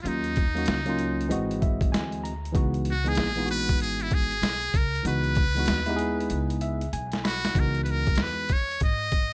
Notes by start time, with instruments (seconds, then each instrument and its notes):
0.02 upright bass D#2, tine electric piano F#3 A#3 C#4, muted trumpet F4, closed hi-hat
0.07 tine electric piano D#4 F4, muted trumpet D#4
0.24 closed hi-hat
0.36 kick, closed hi-hat
0.55 tine electric piano F#3 A#3 C#4 D#4 F#4, closed hi-hat
0.66 upright bass C#2, snare, closed hi-hat
0.86 tine electric piano F#3 A#3 C#4 D#4 F4, closed hi-hat
0.99 closed hi-hat
1.21 closed hi-hat
1.28 upright bass G#1, tine electric piano E3 G#3 C4 F#4 D#5, closed hi-hat
1.51 closed hi-hat
1.62 tine electric piano E5, kick, closed hi-hat
1.81 kick, closed hi-hat
1.92 upright bass D2, tine electric piano G#5, snare, closed hi-hat
2.12 closed hi-hat
2.24 tine electric piano A#5, closed hi-hat
2.45 closed hi-hat
2.53 upright bass C#2, tine electric piano E3 G#3 B3 D#4 F#4, kick, closed hi-hat
2.74 closed hi-hat
2.85 closed hi-hat
2.90 muted trumpet F#4
3.04 tine electric piano E3 G#3 B3 D#4 G#4, closed hi-hat
3.09 muted trumpet G#4
3.15 upright bass A#1, snare, closed hi-hat
3.35 tine electric piano E3 G#3 B3 D#4, closed hi-hat
3.39 tine electric piano F4
3.46 tine electric piano F#4, closed hi-hat
3.51 muted trumpet B4
3.69 kick, closed hi-hat
3.80 upright bass G#1, muted trumpet G#4, closed hi-hat
4.00 muted trumpet E4, closed hi-hat
4.11 muted trumpet G#4, kick, closed hi-hat
4.31 closed hi-hat
4.42 upright bass B1, snare, closed hi-hat
4.61 closed hi-hat
4.74 upright bass C#2, muted trumpet A#4, kick, closed hi-hat
4.95 closed hi-hat
5.03 upright bass C#2, tine electric piano E3 G#3 B3 D#4 F#4, closed hi-hat
5.08 muted trumpet B4
5.24 closed hi-hat
5.35 kick, closed hi-hat
5.55 tine electric piano E3 G#3 B3 D#4, closed hi-hat
5.59 tine electric piano F#4
5.66 upright bass D#2, snare, closed hi-hat
5.86 tine electric piano G#3 B3 D#4 E4, closed hi-hat
5.90 tine electric piano G4
5.96 tine electric piano G#4, closed hi-hat
6.20 closed hi-hat
6.30 upright bass C#2, closed hi-hat
6.50 closed hi-hat
6.61 tine electric piano E5, closed hi-hat
6.81 closed hi-hat
6.93 upright bass B1, tine electric piano G#5, closed hi-hat
7.12 snare, closed hi-hat
7.24 muted trumpet F#4, tine electric piano B5, snare, closed hi-hat
7.45 snare, closed hi-hat
7.54 upright bass C#2, tine electric piano E3 G#3 B3 D#4 F#4, kick, closed hi-hat
7.60 muted trumpet A#4
7.74 closed hi-hat
7.84 muted trumpet B4, closed hi-hat
7.91 muted trumpet A#4
8.07 kick, closed hi-hat
8.15 snare, closed hi-hat
8.22 muted trumpet B4
8.49 kick, closed hi-hat
8.53 muted trumpet C#5
8.71 closed hi-hat
8.80 upright bass G#2, muted trumpet D#5, kick, closed hi-hat
9.12 kick, closed hi-hat